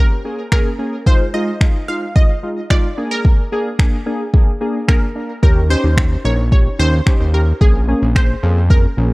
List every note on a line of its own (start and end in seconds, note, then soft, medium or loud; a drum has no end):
0.00 0.14 A#3 medium
0.00 0.15 C#4 medium
0.00 0.15 G4 medium
0.00 0.51 A#4 medium
0.25 0.42 A#3 medium
0.25 0.42 C#4 medium
0.25 0.42 G#4 medium
0.52 0.69 A#3 loud
0.52 0.69 C#4 medium
0.52 0.69 G#4 loud
0.52 1.08 A#4 medium
0.52 finger snap loud
0.52 kick loud
0.79 0.96 A#3 medium
0.79 0.96 C#4 medium
0.79 0.96 G#4 medium
1.06 1.23 G#3 loud
1.06 1.23 D#4 medium
1.06 1.24 F4 loud
1.06 1.32 C5 loud
1.06 kick loud
1.34 1.51 G#3 medium
1.34 1.51 D#4 medium
1.34 1.51 F4 loud
1.34 1.90 D#5 loud
1.61 1.78 G#3 medium
1.61 1.78 D#4 medium
1.61 1.78 F4 medium
1.61 finger snap loud
1.61 kick loud
1.88 2.05 G#3 medium
1.88 2.05 D#4 medium
1.88 2.06 F4 medium
1.88 2.16 F5 loud
2.15 2.33 G#3 medium
2.15 2.33 D#4 medium
2.15 2.33 F4 medium
2.15 2.66 D#5 loud
2.15 kick loud
2.43 2.60 G#3 medium
2.43 2.60 D#4 medium
2.43 2.60 F4 medium
2.70 2.87 G#3 loud
2.70 2.87 D#4 medium
2.70 2.87 F4 loud
2.70 3.12 D5 loud
2.70 finger snap loud
2.70 kick loud
2.97 3.41 A#3 medium
2.97 3.41 D4 medium
2.97 3.41 G#4 medium
3.11 4.71 A#4 loud
3.25 kick loud
3.52 3.69 A#3 medium
3.52 3.69 D4 medium
3.52 3.69 G#4 loud
3.79 3.96 A#3 medium
3.79 3.96 D4 medium
3.79 3.96 G#4 loud
3.79 finger snap loud
3.79 kick loud
4.06 4.23 A#3 medium
4.06 4.23 D4 medium
4.06 4.24 G#4 medium
4.34 4.51 A#3 medium
4.34 4.51 D4 medium
4.34 4.51 G#4 medium
4.34 kick loud
4.61 4.78 A#3 medium
4.61 4.78 D4 medium
4.61 4.78 G#4 medium
4.88 5.05 A#3 loud
4.88 5.05 D4 medium
4.88 5.05 G#4 loud
4.88 5.39 A#4 medium
4.88 finger snap loud
4.88 kick loud
5.15 5.32 A#3 medium
5.15 5.33 D4 medium
5.15 5.33 A#4 medium
5.43 5.76 D#2 medium
5.43 5.60 C#4 medium
5.43 5.60 D#4 medium
5.43 5.60 G4 loud
5.43 5.71 A#4 medium
5.43 kick loud
5.70 5.87 C#4 medium
5.70 5.87 D#4 medium
5.70 5.87 G4 loud
5.70 6.26 C5 loud
5.84 6.17 D#2 medium
5.97 6.14 C#4 medium
5.97 6.14 D#4 medium
5.97 6.15 G4 medium
5.97 finger snap loud
5.97 kick loud
6.24 6.69 A#1 medium
6.24 6.42 C#4 medium
6.24 6.42 D#4 medium
6.24 6.42 A#4 medium
6.24 6.50 C#5 medium
6.52 6.69 C#4 medium
6.52 6.69 D#4 medium
6.52 6.69 G4 medium
6.52 6.78 C#5 medium
6.52 kick loud
6.79 7.01 D#2 medium
6.79 6.96 C#4 medium
6.79 6.96 D#4 medium
6.79 6.96 G4 medium
6.79 7.36 C5 loud
7.06 7.23 C#4 medium
7.06 7.23 D#4 medium
7.06 7.24 G4 loud
7.06 finger snap loud
7.06 kick loud
7.20 7.53 D#2 medium
7.33 7.51 C#4 medium
7.33 7.51 D#4 medium
7.33 7.51 G4 medium
7.33 7.59 A#4 medium
7.61 7.94 A#1 medium
7.61 7.78 A#3 medium
7.61 7.78 C#4 medium
7.61 7.78 G#4 loud
7.61 8.17 G#4 medium
7.61 kick loud
7.88 8.05 A#3 medium
7.88 8.05 C#4 medium
7.88 8.05 G#4 loud
8.02 8.35 A#1 medium
8.15 8.33 A#3 medium
8.15 8.33 C#4 medium
8.15 8.33 G#4 medium
8.15 8.72 C5 medium
8.15 finger snap loud
8.15 kick loud
8.43 8.87 F2 loud
8.43 8.60 A#3 medium
8.43 8.60 C#4 medium
8.43 8.60 G#4 medium
8.70 8.87 A#3 medium
8.70 8.87 C#4 medium
8.70 8.87 G#4 medium
8.70 9.13 A#4 medium
8.70 kick loud
8.97 9.13 A#1 medium
8.97 9.13 A#3 medium
8.97 9.13 C#4 medium
8.97 9.13 G#4 medium